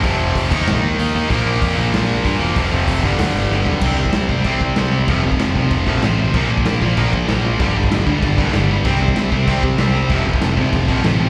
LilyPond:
<<
  \new Staff \with { instrumentName = "Distorted electric guitar" } { \clef bass \time 4/4 \key f \major \tempo 4 = 191 <f, c f>4. <ees bes ees'>4. <ees bes ees'>4 | <bes, f bes>4. <bes, f bes>4. <bes, f bes>4 | <f, c f>4. <g, d g>4. <g, d g>4 | <c g c'>4. <c g c'>4. <c g c'>4 |
<f, c f>4. <f, c f>4. <f, c f>4 | <bes, f bes>4. <bes, f bes>4. <bes, f bes>4 | <g, d g>4. <g, d g>4. <g, d g>4 | <c g c'>4. <c g c'>4. <c g c'>4 |
<f, c f>4. <f, c f>4. <f, c f>4 | }
  \new Staff \with { instrumentName = "Distorted electric guitar" } { \clef bass \time 4/4 \key f \major <f, c f>4. <ees bes ees'>2~ <ees bes ees'>8 | <bes, f bes>2.~ <bes, f bes>8 <bes, f bes>8 | <f, c f>4. <g, d g>2~ <g, d g>8 | <c g c'>8 <c g>8 <c g>8 <c g>8 <c g c'>8 <c g>8 <c g>8 <c g>8 |
<f, c f>8 <f, c>8 <f, c>8 <f, c>8 <f, c>8 <f, c f>8 <f, c>8 <f, c>8 | <bes, f bes>8 <bes, f>8 <bes, f>8 <bes, f>8 <bes, f bes>8 <bes, f>8 <bes, f>8 <bes, f>8 | <g, d g>8 <g, d>8 <g, d>8 <g, d>8 <g, d>8 <g, d g>8 <g, d>8 <g, d>8 | <c g c'>8 <c g>8 <c g>8 <c g>8 <c g c'>8 <c g>8 <c g>8 <c g>8 |
<f, c f>8 <f, c>8 <f, c>8 <f, c>8 <f, c>8 <f, c f>8 <f, c>8 <f, c>8 | }
  \new Staff \with { instrumentName = "Distorted electric guitar" } { \clef bass \time 4/4 \key f \major <f, c f>4. <ees bes ees'>2~ <ees bes ees'>8 | <bes, f bes>1 | <f, c f>4. <g, d g>2~ <g, d g>8 | <c g c'>8 <c g>8 <c g>8 <c g>8 <c g c'>8 <c g>8 <c g>8 <c g>8 |
<f, c f>8 <f, c>8 <f, c>8 <f, c>8 <f, c>8 <f, c f>8 <f, c>8 <f, c>8 | <bes, f bes>8 <bes, f>8 <bes, f>8 <bes, f>8 <bes, f bes>8 <bes, f>8 <bes, f>8 <bes, f>8 | <g, d g>8 <g, d>8 <g, d>8 <g, d>8 <g, d>8 <g, d g>8 <g, d>8 <g, d>8 | <c g c'>8 <c g>8 <c g>8 <c g>8 <c g c'>8 <c g>8 <c g>8 <c g>8 |
<f, c f>8 <f, c>8 <f, c>8 <f, c>8 <f, c>8 <f, c f>8 <f, c>8 <f, c>8 | }
  \new Staff \with { instrumentName = "Picked electric bass" } { \clef bass \time 4/4 \key f \major f,,8 f,,8 f,,8 ees,8 bes,,8 ees,8 ees,8 ees,8 | bes,,8 bes,,8 f,8 bes,,8 bes,,4 g,8 e,,8 | f,,8 f,,8 f,,8 g,,8 d,8 g,,8 g,,8 b,,8 | c,4 c,8 c,8 c,4 c,4 |
f,,8 f,,8 f,,8 c,8 f,,8 bes,,8 a,,4 | bes,,4 bes,,8 bes,,8 bes,,4 bes,,4 | g,,8 g,,8 g,,8 d,8 g,,8 c,8 g,,4 | c,4 c,8 c,8 c,4 c,4 |
f,,8 f,,8 f,,8 c,8 f,,8 bes,,8 a,,4 | }
  \new DrumStaff \with { instrumentName = "Drums" } \drummode { \time 4/4 <hho bd>4 <hho bd>8 <cymc bd>8 sn4 hho4 | <hho bd>4 <hho bd>4 <hho sn>4 <hho bd>4 | <hho bd>4 <hho bd>8 bd8 <hho sn>4 sn8 tomfh8 | <cymc bd>8. bd16 <cymc sn>8 bd8 <cymc bd>8 bd8 <cymc sn>4 |
<cymc bd>8. bd16 <cymc sn>8 bd8 <cymc bd>8 bd8 <cymc sn>4 | <cymc bd>8. bd16 <cymc sn>8 bd8 <cymc bd>8 bd8 <cymc sn>4 | <cymc bd>8. bd16 <cymc sn>8 bd8 <cymc bd>8 bd8 <cymc sn>4 | <cymc bd>8. bd16 <cymc sn>8 bd8 <cymc bd>8 bd8 <cymc sn>4 |
<cymc bd>8. bd16 <cymc sn>8 bd8 <cymc bd>8 bd8 <cymc sn>4 | }
>>